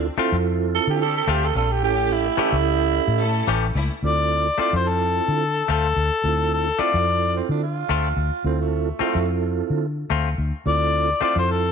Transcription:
Already playing: string section C4 D4
0.17 clean electric guitar A3 C4 F4, tonewheel organ C4 E4 F4 A4, muted fingered electric bass stroke
0.32 fingered electric bass F2
0.75 tenor saxophone A4
0.87 fingered electric bass D3, tenor saxophone G4
1.00 string section C4 D4 G4, tenor saxophone A4
1.17 tenor saxophone A4
1.27 fingered electric bass D2, clean electric guitar A3 C4 F4, tenor saxophone G4
1.45 tenor saxophone A4
1.54 fingered electric bass A#1, string section C4 D4 F4, tenor saxophone A4
1.72 tenor saxophone G4
1.82 fingered electric bass A1, string section A3 C#4 G4, tonewheel organ C#4 E4 G4 A4, tenor saxophone G4
2.12 tenor saxophone E4
2.37 clean electric guitar E3 A3 C#4 G4, tonewheel organ C#4 E4 G4 A4, muted fingered electric bass stroke
2.52 fingered electric bass C#2
3.08 fingered electric bass A2
3.19 string section A3 C#4 A4
3.47 fingered electric bass A1, clean electric guitar E3 A3 C#4 G4
3.75 fingered electric bass C#2, string section A3 C#4 E4
4.03 fingered electric bass D2, tonewheel organ C4 E4 F4 A4, harmonica D5
4.58 clean electric guitar A3 C4 F4, tonewheel organ C4 E4 F4 A4, harmonica D5, muted fingered electric bass stroke
4.73 fingered electric bass F2, harmonica C5
4.88 harmonica A4
5.28 fingered electric bass D3
5.68 fingered electric bass D2, clean electric guitar A3 C4 F4, harmonica A4
5.96 fingered electric bass D2
6.24 fingered electric bass D2, tonewheel organ C4 E4 F4 A4
6.54 harmonica A4
6.79 clean electric guitar A3 C4 F4, tonewheel organ C4 E4 F4 A4, harmonica D5, muted fingered electric bass stroke
6.94 fingered electric bass F2
7.36 tenor saxophone C4
7.49 fingered electric bass D3, tenor saxophone D4
7.63 tenor saxophone F4
7.89 fingered electric bass D2, clean electric guitar A3 C4 F4
8.17 fingered electric bass D2
8.44 fingered electric bass D2, tonewheel organ C4 E4 F4 A4, tenor saxophone C4
8.62 tenor saxophone A3
8.99 clean electric guitar A3 C4 F4, tenor saxophone A3, tonewheel organ C4 E4 F4 A4, muted fingered electric bass stroke
9.15 fingered electric bass F2
9.70 fingered electric bass D3
10.10 fingered electric bass D2, clean electric guitar A3 C4 F4
10.38 fingered electric bass D2
10.66 fingered electric bass D2, tonewheel organ C4 E4 F4 A4, harmonica D5
11.21 clean electric guitar A3 C4 F4, tonewheel organ C4 E4 F4 A4, harmonica D5, muted fingered electric bass stroke
11.36 fingered electric bass F2, harmonica C5
11.51 harmonica A4

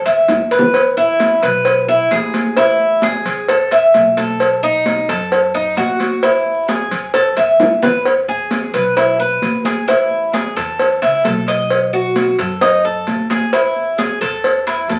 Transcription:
0.06 upright bass D#2, cuban tres E5, cowbell, high conga
0.28 upright bass E2, cowbell, high bongo, high conga
0.51 cuban tres B4, cowbell
0.59 low bongo
0.74 cowbell, high conga
0.97 cuban tres E4, high conga
1.20 cowbell, high conga
1.43 upright bass B1, cuban tres B4, cowbell, high conga
1.65 cowbell, high conga
1.88 cuban tres E4, high conga
2.11 upright bass A1, cuban tres G#4, cowbell, high conga
2.34 cowbell, high conga
2.57 cuban tres E4, cowbell, high conga
2.80 high conga
3.02 cuban tres G#4, cowbell, high conga
3.25 upright bass E2, cowbell, high conga
3.48 cuban tres A4, cowbell, high conga
3.71 cuban tres E5, cowbell, high conga
3.94 upright bass B1, cowbell, high conga
4.17 cuban tres A4, cowbell, high conga
4.40 cowbell
4.63 cuban tres D#4, high conga
4.86 cowbell, high conga
5.08 upright bass F#2, cuban tres A4, cowbell, high conga
5.31 cowbell, high conga
5.54 cuban tres D#4, high conga
5.77 upright bass A1, cuban tres F#4, cowbell, high conga
6.00 cowbell, high conga
6.23 cuban tres E4, cowbell, high conga
6.46 high conga
6.68 cuban tres G#4, cowbell, high conga
6.91 upright bass E2, cowbell, high conga
7.14 cuban tres A4, cowbell, high conga
7.37 upright bass D#2, cuban tres E5, cowbell, high conga
7.60 upright bass E2, cowbell, high bongo, high conga
7.82 cuban tres B4, cowbell, low bongo
8.05 cowbell, high conga
8.28 cuban tres G#4, high conga
8.51 cowbell, high conga
8.74 upright bass B1, cuban tres B4, cowbell, high conga
8.97 cuban tres E4, cowbell, high conga
9.20 cuban tres B4, high conga
9.42 upright bass A1, cowbell, high conga
9.65 cuban tres G#4, cowbell, high conga
9.88 cuban tres E4, cowbell, high conga
10.11 high conga
10.33 cuban tres G#4, cowbell, high conga
10.56 upright bass E2, cuban tres A4, cowbell, high conga
10.79 cowbell, high conga
11.02 upright bass C#2, cuban tres E4, cowbell, high conga
11.25 upright bass B1, cuban tres A4, cowbell, high conga
11.48 cuban tres D#5, cowbell
11.70 cowbell, high conga
11.93 cuban tres F#4, high conga
12.16 cowbell, high conga
12.39 upright bass F#2, cuban tres A4, cowbell, high conga
12.61 cuban tres D#4, cowbell, high conga
12.84 cuban tres A4, high conga
13.07 upright bass A1, cowbell, high conga
13.30 cuban tres G#4, cowbell, high conga
13.53 cuban tres E4, cowbell, high conga
13.76 high conga
13.98 cuban tres G#4, cowbell, high conga
14.21 upright bass E2, cuban tres A4, cowbell, high conga
14.44 cowbell, high conga
14.67 cuban tres E4, cowbell, high conga
14.89 upright bass E2, cuban tres A4, cowbell, high conga

